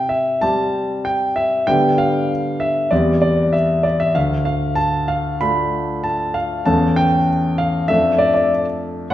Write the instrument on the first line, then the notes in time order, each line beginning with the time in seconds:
grand piano
Already playing: C3
0.09 E5
0.41 G3 C4 G4 A5
1.05 G5
1.36 E5
1.67 D3 G3 B3 G4 G5
1.98 F5
2.60 E5
2.91 E2 G3 C4 G4 D5
3.22 D5
3.53 E5
3.83 D5
4.00 E5
4.15 D2 F5
4.45 F5
4.75 A5
5.08 F5
5.41 A3 D4 F4 B5
6.04 A5
6.34 F5
6.65 E2 A3 C#4 A4 A5
6.96 G5
7.58 F5
7.88 F2 A3 D4 A4 E5
8.18 D5
8.34 D5
9.10 A2 F#5